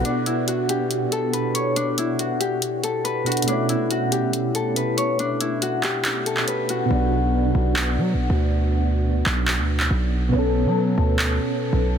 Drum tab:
HH |x---x---x---x---x---x---x---x---|x---x---x---x---x---x---x---xxxx|x---x---x---x---x---x---x---x---|x---x---x---x---x---x---x---x---|
CP |--------------------------------|--------------------------------|--------------------------------|------------x---x-----x---------|

HH |--------------------------------|--------------------------------|--------------------------------|
CP |----------------x---------------|------------x---x-----x---------|----------------x---------------|